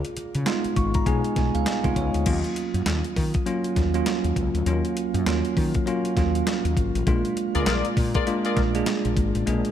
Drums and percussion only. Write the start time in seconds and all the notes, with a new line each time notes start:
0.05 closed hi-hat
0.17 closed hi-hat
0.35 closed hi-hat
0.46 snare, clap, closed hi-hat
0.64 closed hi-hat
0.76 kick, closed hi-hat
0.94 kick, closed hi-hat
1.06 kick, closed hi-hat
1.24 closed hi-hat
1.36 kick, snare, closed hi-hat
1.55 closed hi-hat
1.66 snare, clap, closed hi-hat
1.84 kick, closed hi-hat
1.96 kick, closed hi-hat
2.14 closed hi-hat
2.26 kick, closed hi-hat, crash
2.44 closed hi-hat
2.56 closed hi-hat
2.74 closed hi-hat
2.86 snare, clap, closed hi-hat
3.04 closed hi-hat
3.16 kick, open hi-hat
3.34 kick, closed hi-hat
3.46 closed hi-hat
3.64 closed hi-hat
3.76 kick, snare, closed hi-hat
3.94 closed hi-hat
4.06 snare, clap, closed hi-hat
4.24 closed hi-hat
4.36 kick, closed hi-hat
4.55 closed hi-hat
4.66 closed hi-hat
4.85 closed hi-hat
4.97 closed hi-hat
5.14 closed hi-hat
5.26 snare, clap, closed hi-hat
5.45 closed hi-hat
5.57 kick, open hi-hat
5.74 kick, closed hi-hat
5.87 closed hi-hat
6.05 closed hi-hat
6.17 kick, snare, closed hi-hat
6.35 closed hi-hat
6.47 snare, clap, closed hi-hat
6.65 closed hi-hat
6.77 kick, closed hi-hat
6.95 closed hi-hat
7.07 kick, closed hi-hat
7.25 closed hi-hat
7.37 closed hi-hat
7.55 closed hi-hat
7.66 snare, clap, closed hi-hat
7.85 closed hi-hat
7.97 kick, open hi-hat
8.15 kick, closed hi-hat
8.27 closed hi-hat
8.45 closed hi-hat
8.57 kick, snare, closed hi-hat
8.75 closed hi-hat
8.86 snare, clap, closed hi-hat
9.05 closed hi-hat
9.17 kick, closed hi-hat
9.35 closed hi-hat
9.47 closed hi-hat
9.65 closed hi-hat